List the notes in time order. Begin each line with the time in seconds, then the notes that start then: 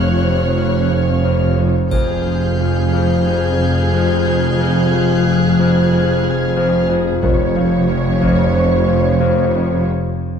Already playing: F1 F2 F3 C#5 F6 F#6
0.22 F2
0.56 F2
0.90 F3
1.24 F2
1.58 F2
1.91 F1 F2 G#4 F6 G6, taiko, triangle
2.26 F3
2.60 F3
2.93 F2
3.27 F2 G#6
3.61 F3
3.93 F2
4.27 F2
4.60 F2
4.93 F3
5.14 F#6
5.26 F3
5.59 F2
5.92 F2
6.25 F3
6.56 F2
6.89 F2
7.23 F1 F2 C#5, taiko
7.56 F3
7.89 F3
8.21 F2, taiko
8.54 F2
8.88 F3
9.20 F2
9.55 F2